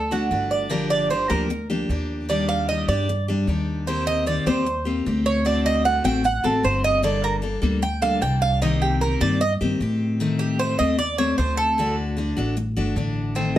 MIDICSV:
0, 0, Header, 1, 5, 480
1, 0, Start_track
1, 0, Key_signature, -2, "minor"
1, 0, Tempo, 395257
1, 865, Time_signature, 4, 2, 24, 8
1, 16499, End_track
2, 0, Start_track
2, 0, Title_t, "Cuban tres"
2, 0, Program_c, 0, 25
2, 0, Note_on_c, 0, 69, 59
2, 135, Note_off_c, 0, 69, 0
2, 147, Note_on_c, 0, 66, 74
2, 612, Note_off_c, 0, 66, 0
2, 618, Note_on_c, 0, 74, 67
2, 855, Note_off_c, 0, 74, 0
2, 857, Note_on_c, 0, 70, 64
2, 1094, Note_off_c, 0, 70, 0
2, 1097, Note_on_c, 0, 74, 91
2, 1334, Note_off_c, 0, 74, 0
2, 1341, Note_on_c, 0, 72, 79
2, 1576, Note_off_c, 0, 72, 0
2, 1577, Note_on_c, 0, 70, 79
2, 2027, Note_off_c, 0, 70, 0
2, 2787, Note_on_c, 0, 74, 69
2, 3014, Note_off_c, 0, 74, 0
2, 3019, Note_on_c, 0, 77, 97
2, 3256, Note_off_c, 0, 77, 0
2, 3263, Note_on_c, 0, 75, 80
2, 3497, Note_off_c, 0, 75, 0
2, 3503, Note_on_c, 0, 74, 83
2, 3951, Note_off_c, 0, 74, 0
2, 4703, Note_on_c, 0, 72, 75
2, 4937, Note_off_c, 0, 72, 0
2, 4942, Note_on_c, 0, 75, 106
2, 5177, Note_off_c, 0, 75, 0
2, 5185, Note_on_c, 0, 74, 82
2, 5419, Note_off_c, 0, 74, 0
2, 5426, Note_on_c, 0, 72, 80
2, 5873, Note_off_c, 0, 72, 0
2, 6387, Note_on_c, 0, 73, 90
2, 6619, Note_off_c, 0, 73, 0
2, 6629, Note_on_c, 0, 74, 87
2, 6861, Note_off_c, 0, 74, 0
2, 6871, Note_on_c, 0, 75, 101
2, 7102, Note_off_c, 0, 75, 0
2, 7107, Note_on_c, 0, 78, 90
2, 7339, Note_off_c, 0, 78, 0
2, 7346, Note_on_c, 0, 79, 99
2, 7579, Note_off_c, 0, 79, 0
2, 7591, Note_on_c, 0, 78, 84
2, 7822, Note_off_c, 0, 78, 0
2, 7823, Note_on_c, 0, 69, 77
2, 8057, Note_off_c, 0, 69, 0
2, 8069, Note_on_c, 0, 72, 76
2, 8301, Note_off_c, 0, 72, 0
2, 8310, Note_on_c, 0, 75, 105
2, 8541, Note_off_c, 0, 75, 0
2, 8549, Note_on_c, 0, 74, 83
2, 8780, Note_off_c, 0, 74, 0
2, 8790, Note_on_c, 0, 70, 91
2, 8933, Note_off_c, 0, 70, 0
2, 9505, Note_on_c, 0, 79, 90
2, 9737, Note_off_c, 0, 79, 0
2, 9742, Note_on_c, 0, 77, 103
2, 9976, Note_off_c, 0, 77, 0
2, 9981, Note_on_c, 0, 79, 88
2, 10216, Note_off_c, 0, 79, 0
2, 10222, Note_on_c, 0, 77, 96
2, 10456, Note_off_c, 0, 77, 0
2, 10468, Note_on_c, 0, 75, 79
2, 10699, Note_off_c, 0, 75, 0
2, 10707, Note_on_c, 0, 67, 70
2, 10939, Note_off_c, 0, 67, 0
2, 10945, Note_on_c, 0, 70, 82
2, 11178, Note_off_c, 0, 70, 0
2, 11186, Note_on_c, 0, 74, 101
2, 11418, Note_off_c, 0, 74, 0
2, 11427, Note_on_c, 0, 75, 94
2, 11570, Note_off_c, 0, 75, 0
2, 12620, Note_on_c, 0, 67, 81
2, 12855, Note_off_c, 0, 67, 0
2, 12865, Note_on_c, 0, 72, 97
2, 13095, Note_off_c, 0, 72, 0
2, 13100, Note_on_c, 0, 75, 109
2, 13335, Note_off_c, 0, 75, 0
2, 13341, Note_on_c, 0, 74, 101
2, 13575, Note_off_c, 0, 74, 0
2, 13581, Note_on_c, 0, 73, 109
2, 13813, Note_off_c, 0, 73, 0
2, 13818, Note_on_c, 0, 72, 84
2, 14054, Note_off_c, 0, 72, 0
2, 14055, Note_on_c, 0, 69, 98
2, 14506, Note_off_c, 0, 69, 0
2, 16223, Note_on_c, 0, 60, 72
2, 16499, Note_off_c, 0, 60, 0
2, 16499, End_track
3, 0, Start_track
3, 0, Title_t, "Steel-string acoustic guitar"
3, 0, Program_c, 1, 25
3, 135, Note_on_c, 1, 66, 69
3, 145, Note_on_c, 1, 62, 58
3, 152, Note_on_c, 1, 57, 53
3, 363, Note_off_c, 1, 57, 0
3, 371, Note_off_c, 1, 62, 0
3, 371, Note_off_c, 1, 66, 0
3, 375, Note_on_c, 1, 50, 48
3, 378, Note_on_c, 1, 57, 52
3, 385, Note_on_c, 1, 62, 51
3, 387, Note_on_c, 1, 66, 58
3, 830, Note_off_c, 1, 50, 0
3, 845, Note_on_c, 1, 50, 70
3, 848, Note_off_c, 1, 62, 0
3, 852, Note_off_c, 1, 57, 0
3, 852, Note_on_c, 1, 53, 76
3, 857, Note_off_c, 1, 66, 0
3, 858, Note_on_c, 1, 58, 71
3, 863, Note_on_c, 1, 62, 77
3, 867, Note_on_c, 1, 67, 78
3, 1323, Note_off_c, 1, 53, 0
3, 1326, Note_off_c, 1, 50, 0
3, 1331, Note_off_c, 1, 62, 0
3, 1332, Note_off_c, 1, 58, 0
3, 1337, Note_off_c, 1, 67, 0
3, 1337, Note_on_c, 1, 53, 50
3, 1345, Note_on_c, 1, 58, 51
3, 1346, Note_on_c, 1, 62, 50
3, 1353, Note_on_c, 1, 67, 54
3, 1557, Note_off_c, 1, 67, 0
3, 1561, Note_off_c, 1, 62, 0
3, 1567, Note_off_c, 1, 58, 0
3, 1572, Note_off_c, 1, 53, 0
3, 1572, Note_on_c, 1, 67, 67
3, 1576, Note_on_c, 1, 62, 61
3, 1582, Note_on_c, 1, 58, 57
3, 1587, Note_on_c, 1, 53, 60
3, 1807, Note_off_c, 1, 53, 0
3, 1809, Note_off_c, 1, 67, 0
3, 1811, Note_off_c, 1, 62, 0
3, 1814, Note_off_c, 1, 58, 0
3, 2060, Note_on_c, 1, 67, 64
3, 2067, Note_on_c, 1, 62, 63
3, 2072, Note_on_c, 1, 58, 55
3, 2081, Note_on_c, 1, 53, 49
3, 2288, Note_off_c, 1, 53, 0
3, 2294, Note_off_c, 1, 67, 0
3, 2296, Note_off_c, 1, 58, 0
3, 2297, Note_off_c, 1, 62, 0
3, 2302, Note_on_c, 1, 53, 44
3, 2311, Note_on_c, 1, 58, 56
3, 2314, Note_on_c, 1, 62, 55
3, 2318, Note_on_c, 1, 67, 51
3, 2772, Note_off_c, 1, 53, 0
3, 2777, Note_on_c, 1, 51, 72
3, 2779, Note_off_c, 1, 58, 0
3, 2781, Note_off_c, 1, 62, 0
3, 2783, Note_off_c, 1, 67, 0
3, 2788, Note_on_c, 1, 55, 69
3, 2793, Note_on_c, 1, 62, 73
3, 2797, Note_on_c, 1, 67, 80
3, 3248, Note_off_c, 1, 51, 0
3, 3255, Note_off_c, 1, 55, 0
3, 3260, Note_off_c, 1, 62, 0
3, 3262, Note_off_c, 1, 67, 0
3, 3262, Note_on_c, 1, 51, 49
3, 3269, Note_on_c, 1, 55, 51
3, 3274, Note_on_c, 1, 62, 53
3, 3283, Note_on_c, 1, 67, 57
3, 3493, Note_off_c, 1, 67, 0
3, 3495, Note_off_c, 1, 51, 0
3, 3498, Note_off_c, 1, 55, 0
3, 3501, Note_off_c, 1, 62, 0
3, 3508, Note_on_c, 1, 67, 70
3, 3517, Note_on_c, 1, 62, 58
3, 3527, Note_on_c, 1, 55, 58
3, 3738, Note_off_c, 1, 67, 0
3, 3740, Note_off_c, 1, 55, 0
3, 3742, Note_off_c, 1, 62, 0
3, 3987, Note_on_c, 1, 67, 68
3, 4000, Note_on_c, 1, 62, 63
3, 4002, Note_on_c, 1, 55, 55
3, 4217, Note_off_c, 1, 55, 0
3, 4217, Note_off_c, 1, 67, 0
3, 4219, Note_off_c, 1, 62, 0
3, 4220, Note_on_c, 1, 51, 48
3, 4231, Note_on_c, 1, 55, 48
3, 4234, Note_on_c, 1, 62, 55
3, 4242, Note_on_c, 1, 67, 58
3, 4689, Note_off_c, 1, 51, 0
3, 4699, Note_off_c, 1, 55, 0
3, 4700, Note_off_c, 1, 62, 0
3, 4704, Note_on_c, 1, 51, 63
3, 4705, Note_off_c, 1, 67, 0
3, 4706, Note_on_c, 1, 58, 75
3, 4713, Note_on_c, 1, 60, 74
3, 4717, Note_on_c, 1, 67, 78
3, 5162, Note_off_c, 1, 51, 0
3, 5165, Note_off_c, 1, 58, 0
3, 5174, Note_off_c, 1, 60, 0
3, 5176, Note_on_c, 1, 51, 52
3, 5177, Note_off_c, 1, 67, 0
3, 5179, Note_on_c, 1, 58, 56
3, 5189, Note_on_c, 1, 60, 51
3, 5191, Note_on_c, 1, 67, 60
3, 5406, Note_off_c, 1, 67, 0
3, 5412, Note_off_c, 1, 51, 0
3, 5412, Note_off_c, 1, 60, 0
3, 5413, Note_off_c, 1, 58, 0
3, 5421, Note_on_c, 1, 67, 72
3, 5427, Note_on_c, 1, 60, 64
3, 5434, Note_on_c, 1, 58, 63
3, 5649, Note_off_c, 1, 58, 0
3, 5654, Note_off_c, 1, 67, 0
3, 5657, Note_off_c, 1, 60, 0
3, 5892, Note_on_c, 1, 67, 63
3, 5905, Note_on_c, 1, 60, 61
3, 5910, Note_on_c, 1, 58, 55
3, 6130, Note_off_c, 1, 67, 0
3, 6134, Note_off_c, 1, 58, 0
3, 6136, Note_off_c, 1, 60, 0
3, 6149, Note_on_c, 1, 58, 56
3, 6155, Note_on_c, 1, 60, 50
3, 6164, Note_on_c, 1, 67, 57
3, 6614, Note_off_c, 1, 60, 0
3, 6616, Note_on_c, 1, 50, 67
3, 6618, Note_off_c, 1, 58, 0
3, 6625, Note_on_c, 1, 57, 69
3, 6626, Note_off_c, 1, 67, 0
3, 6629, Note_on_c, 1, 60, 71
3, 6633, Note_on_c, 1, 66, 78
3, 7088, Note_off_c, 1, 50, 0
3, 7096, Note_off_c, 1, 57, 0
3, 7098, Note_off_c, 1, 60, 0
3, 7100, Note_off_c, 1, 66, 0
3, 7103, Note_on_c, 1, 50, 50
3, 7109, Note_on_c, 1, 57, 54
3, 7114, Note_on_c, 1, 60, 52
3, 7120, Note_on_c, 1, 66, 55
3, 7322, Note_off_c, 1, 66, 0
3, 7326, Note_off_c, 1, 60, 0
3, 7334, Note_off_c, 1, 57, 0
3, 7335, Note_off_c, 1, 50, 0
3, 7337, Note_on_c, 1, 66, 67
3, 7341, Note_on_c, 1, 60, 67
3, 7348, Note_on_c, 1, 57, 63
3, 7569, Note_off_c, 1, 57, 0
3, 7570, Note_off_c, 1, 60, 0
3, 7572, Note_off_c, 1, 66, 0
3, 7815, Note_on_c, 1, 66, 68
3, 7825, Note_on_c, 1, 60, 59
3, 7832, Note_on_c, 1, 57, 51
3, 8047, Note_off_c, 1, 57, 0
3, 8051, Note_off_c, 1, 66, 0
3, 8053, Note_off_c, 1, 60, 0
3, 8056, Note_on_c, 1, 50, 46
3, 8062, Note_on_c, 1, 57, 51
3, 8067, Note_on_c, 1, 60, 51
3, 8074, Note_on_c, 1, 66, 57
3, 8517, Note_off_c, 1, 50, 0
3, 8531, Note_on_c, 1, 50, 62
3, 8534, Note_off_c, 1, 57, 0
3, 8537, Note_off_c, 1, 60, 0
3, 8540, Note_off_c, 1, 66, 0
3, 8540, Note_on_c, 1, 55, 71
3, 8543, Note_on_c, 1, 58, 75
3, 8549, Note_on_c, 1, 69, 84
3, 8550, Note_on_c, 1, 62, 82
3, 8994, Note_off_c, 1, 55, 0
3, 8996, Note_off_c, 1, 58, 0
3, 9005, Note_off_c, 1, 62, 0
3, 9009, Note_off_c, 1, 50, 0
3, 9009, Note_on_c, 1, 55, 47
3, 9011, Note_on_c, 1, 58, 55
3, 9012, Note_off_c, 1, 69, 0
3, 9019, Note_on_c, 1, 62, 54
3, 9027, Note_on_c, 1, 69, 58
3, 9235, Note_off_c, 1, 69, 0
3, 9246, Note_off_c, 1, 62, 0
3, 9248, Note_off_c, 1, 55, 0
3, 9249, Note_off_c, 1, 58, 0
3, 9249, Note_on_c, 1, 69, 70
3, 9260, Note_on_c, 1, 62, 66
3, 9267, Note_on_c, 1, 58, 67
3, 9270, Note_on_c, 1, 55, 57
3, 9486, Note_off_c, 1, 55, 0
3, 9486, Note_off_c, 1, 58, 0
3, 9488, Note_off_c, 1, 69, 0
3, 9493, Note_off_c, 1, 62, 0
3, 9736, Note_on_c, 1, 69, 72
3, 9745, Note_on_c, 1, 62, 63
3, 9749, Note_on_c, 1, 58, 57
3, 9755, Note_on_c, 1, 55, 56
3, 9968, Note_off_c, 1, 55, 0
3, 9970, Note_off_c, 1, 58, 0
3, 9971, Note_off_c, 1, 69, 0
3, 9975, Note_off_c, 1, 62, 0
3, 9983, Note_on_c, 1, 55, 50
3, 9985, Note_on_c, 1, 58, 48
3, 9992, Note_on_c, 1, 62, 57
3, 9998, Note_on_c, 1, 69, 56
3, 10454, Note_off_c, 1, 55, 0
3, 10455, Note_off_c, 1, 58, 0
3, 10459, Note_off_c, 1, 62, 0
3, 10462, Note_off_c, 1, 69, 0
3, 10463, Note_on_c, 1, 48, 70
3, 10469, Note_on_c, 1, 51, 71
3, 10472, Note_on_c, 1, 58, 78
3, 10479, Note_on_c, 1, 60, 80
3, 10480, Note_on_c, 1, 67, 81
3, 10934, Note_off_c, 1, 48, 0
3, 10937, Note_off_c, 1, 51, 0
3, 10939, Note_off_c, 1, 58, 0
3, 10942, Note_off_c, 1, 60, 0
3, 10943, Note_off_c, 1, 67, 0
3, 10949, Note_on_c, 1, 51, 46
3, 10959, Note_on_c, 1, 58, 58
3, 10960, Note_on_c, 1, 60, 57
3, 10967, Note_on_c, 1, 67, 59
3, 11164, Note_off_c, 1, 67, 0
3, 11172, Note_off_c, 1, 60, 0
3, 11177, Note_off_c, 1, 51, 0
3, 11178, Note_on_c, 1, 67, 68
3, 11182, Note_off_c, 1, 58, 0
3, 11187, Note_on_c, 1, 60, 65
3, 11196, Note_on_c, 1, 58, 63
3, 11198, Note_on_c, 1, 51, 58
3, 11412, Note_off_c, 1, 67, 0
3, 11413, Note_off_c, 1, 51, 0
3, 11416, Note_off_c, 1, 60, 0
3, 11418, Note_off_c, 1, 58, 0
3, 11667, Note_on_c, 1, 67, 69
3, 11673, Note_on_c, 1, 60, 62
3, 11678, Note_on_c, 1, 58, 59
3, 11686, Note_on_c, 1, 51, 57
3, 11894, Note_off_c, 1, 51, 0
3, 11896, Note_off_c, 1, 67, 0
3, 11899, Note_off_c, 1, 60, 0
3, 11902, Note_off_c, 1, 58, 0
3, 11908, Note_on_c, 1, 51, 54
3, 11917, Note_on_c, 1, 60, 56
3, 11926, Note_on_c, 1, 67, 59
3, 12373, Note_off_c, 1, 51, 0
3, 12381, Note_off_c, 1, 60, 0
3, 12386, Note_off_c, 1, 67, 0
3, 12388, Note_on_c, 1, 51, 72
3, 12397, Note_on_c, 1, 57, 82
3, 12402, Note_on_c, 1, 60, 81
3, 12850, Note_off_c, 1, 51, 0
3, 12861, Note_off_c, 1, 57, 0
3, 12863, Note_off_c, 1, 60, 0
3, 12864, Note_on_c, 1, 51, 52
3, 12878, Note_on_c, 1, 57, 55
3, 12884, Note_on_c, 1, 60, 61
3, 13091, Note_off_c, 1, 60, 0
3, 13095, Note_off_c, 1, 51, 0
3, 13101, Note_off_c, 1, 57, 0
3, 13106, Note_on_c, 1, 60, 82
3, 13125, Note_on_c, 1, 57, 68
3, 13332, Note_off_c, 1, 57, 0
3, 13332, Note_off_c, 1, 60, 0
3, 13581, Note_on_c, 1, 60, 76
3, 13598, Note_on_c, 1, 57, 54
3, 13813, Note_off_c, 1, 60, 0
3, 13816, Note_off_c, 1, 57, 0
3, 13831, Note_on_c, 1, 57, 54
3, 13839, Note_on_c, 1, 60, 57
3, 14298, Note_off_c, 1, 57, 0
3, 14302, Note_off_c, 1, 60, 0
3, 14305, Note_on_c, 1, 50, 75
3, 14317, Note_on_c, 1, 57, 78
3, 14323, Note_on_c, 1, 62, 78
3, 14325, Note_on_c, 1, 66, 87
3, 14760, Note_off_c, 1, 50, 0
3, 14772, Note_off_c, 1, 57, 0
3, 14775, Note_on_c, 1, 50, 52
3, 14777, Note_off_c, 1, 62, 0
3, 14780, Note_off_c, 1, 66, 0
3, 14787, Note_on_c, 1, 57, 52
3, 14792, Note_on_c, 1, 62, 59
3, 14795, Note_on_c, 1, 66, 57
3, 15002, Note_off_c, 1, 66, 0
3, 15010, Note_off_c, 1, 50, 0
3, 15016, Note_off_c, 1, 57, 0
3, 15017, Note_on_c, 1, 66, 74
3, 15018, Note_off_c, 1, 62, 0
3, 15031, Note_on_c, 1, 62, 66
3, 15041, Note_on_c, 1, 57, 61
3, 15250, Note_off_c, 1, 62, 0
3, 15251, Note_off_c, 1, 57, 0
3, 15251, Note_off_c, 1, 66, 0
3, 15502, Note_on_c, 1, 66, 70
3, 15509, Note_on_c, 1, 62, 64
3, 15517, Note_on_c, 1, 57, 57
3, 15733, Note_off_c, 1, 57, 0
3, 15734, Note_off_c, 1, 66, 0
3, 15737, Note_off_c, 1, 62, 0
3, 15742, Note_on_c, 1, 50, 57
3, 15747, Note_on_c, 1, 57, 50
3, 15756, Note_on_c, 1, 62, 56
3, 15760, Note_on_c, 1, 66, 56
3, 16207, Note_off_c, 1, 57, 0
3, 16209, Note_off_c, 1, 50, 0
3, 16214, Note_on_c, 1, 51, 69
3, 16221, Note_off_c, 1, 62, 0
3, 16222, Note_on_c, 1, 57, 76
3, 16223, Note_off_c, 1, 66, 0
3, 16226, Note_on_c, 1, 60, 71
3, 16499, Note_off_c, 1, 51, 0
3, 16499, Note_off_c, 1, 57, 0
3, 16499, Note_off_c, 1, 60, 0
3, 16499, End_track
4, 0, Start_track
4, 0, Title_t, "Upright bass"
4, 0, Program_c, 2, 32
4, 0, Note_on_c, 2, 38, 85
4, 333, Note_off_c, 2, 38, 0
4, 373, Note_on_c, 2, 31, 84
4, 1507, Note_off_c, 2, 31, 0
4, 1578, Note_on_c, 2, 38, 88
4, 2254, Note_off_c, 2, 38, 0
4, 2299, Note_on_c, 2, 39, 92
4, 3430, Note_off_c, 2, 39, 0
4, 3499, Note_on_c, 2, 43, 90
4, 4174, Note_off_c, 2, 43, 0
4, 4217, Note_on_c, 2, 39, 95
4, 5349, Note_off_c, 2, 39, 0
4, 5416, Note_on_c, 2, 39, 89
4, 6093, Note_off_c, 2, 39, 0
4, 6148, Note_on_c, 2, 38, 96
4, 7274, Note_off_c, 2, 38, 0
4, 7338, Note_on_c, 2, 33, 90
4, 7788, Note_off_c, 2, 33, 0
4, 7826, Note_on_c, 2, 33, 70
4, 8049, Note_off_c, 2, 33, 0
4, 8057, Note_on_c, 2, 31, 91
4, 9189, Note_off_c, 2, 31, 0
4, 9254, Note_on_c, 2, 38, 91
4, 9931, Note_off_c, 2, 38, 0
4, 9973, Note_on_c, 2, 36, 98
4, 11106, Note_off_c, 2, 36, 0
4, 11185, Note_on_c, 2, 43, 90
4, 11631, Note_off_c, 2, 43, 0
4, 11669, Note_on_c, 2, 43, 79
4, 11890, Note_off_c, 2, 43, 0
4, 11906, Note_on_c, 2, 45, 98
4, 13032, Note_off_c, 2, 45, 0
4, 13109, Note_on_c, 2, 39, 89
4, 13778, Note_off_c, 2, 39, 0
4, 13827, Note_on_c, 2, 38, 101
4, 14953, Note_off_c, 2, 38, 0
4, 15026, Note_on_c, 2, 33, 94
4, 15472, Note_off_c, 2, 33, 0
4, 15504, Note_on_c, 2, 31, 74
4, 15728, Note_off_c, 2, 31, 0
4, 15737, Note_on_c, 2, 33, 92
4, 16499, Note_off_c, 2, 33, 0
4, 16499, End_track
5, 0, Start_track
5, 0, Title_t, "Muted steel-string acoustic guitar strokes"
5, 1822, Note_on_c, 9, 29, 57
5, 1943, Note_off_c, 9, 29, 0
5, 3754, Note_on_c, 9, 29, 64
5, 3876, Note_off_c, 9, 29, 0
5, 5663, Note_on_c, 9, 29, 58
5, 5785, Note_off_c, 9, 29, 0
5, 7577, Note_on_c, 9, 29, 58
5, 7699, Note_off_c, 9, 29, 0
5, 9499, Note_on_c, 9, 29, 59
5, 9620, Note_off_c, 9, 29, 0
5, 11426, Note_on_c, 9, 29, 53
5, 11547, Note_off_c, 9, 29, 0
5, 13340, Note_on_c, 9, 29, 57
5, 13461, Note_off_c, 9, 29, 0
5, 15261, Note_on_c, 9, 29, 59
5, 15382, Note_off_c, 9, 29, 0
5, 16499, End_track
0, 0, End_of_file